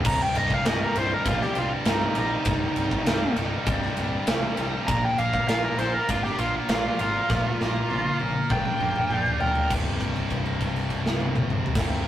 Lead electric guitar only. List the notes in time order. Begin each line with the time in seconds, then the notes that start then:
0.06 A#5
0.22 G5
0.37 D#5
0.54 F5
0.66 D#5
0.83 A#4
0.98 C5
1.14 A#4
1.28 F4
1.42 G4
1.58 F4
1.89 D#4
2.19 D#4
4.87 A#5
5.05 G5
5.18 F5
5.34 F5
5.48 F5
5.64 A#4
5.80 C5
5.94 A#4
6.10 F4
6.24 G4
6.40 F4
6.70 F4
7.00 F4
8.51 G5
9.41 G5